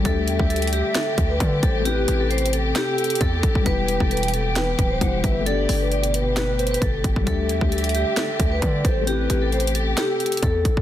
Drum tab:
HH |x-----------x-----------x--x--x--x--x-----------x-----------x-----------x-----------x-----------|x-----------x-----------x---x---x---x-----------x-----------x--x--x--x--x-----------x-----------|x-----------x-----------x--x--x--x--x-----------x-----------x-----------x-----------x-----------|x-----------o-----------x-----x-----x-----------x-----------x---x---x---x-----------x-----------|
SD |------------------------------------------------o-----------------------------------------------|------------------------------------------------o-----------------------------------------------|------------------------------------------------o-----------------------------------------------|------------------------------------------------o-----------------------------------------------|
BD |o-----------------o-----------------------------------------o-----------o-----------o-----------|------------------------------------------------------------------------o-----------o-----o-----|o-----------------o-----------------------------------------o-----------o-----------o-----------|------------------------------------------------------------------------o-----------o-----o-----|

HH |x-----------x-----------x--x--x--x--x-----------x-----------x-----------x-----------x-----------|x-----------x-----------x---x---x---x-----------x-----------x--x--x--x--x-----------x-----------|
SD |------------------------------------------------o-----------------------------------------------|------------------------------------------------o-----------------------------------------------|
BD |o-----------------o-----------------------------------------o-----------o-----------o-----------|------------------------------------------------------------------------o-----------o-----o-----|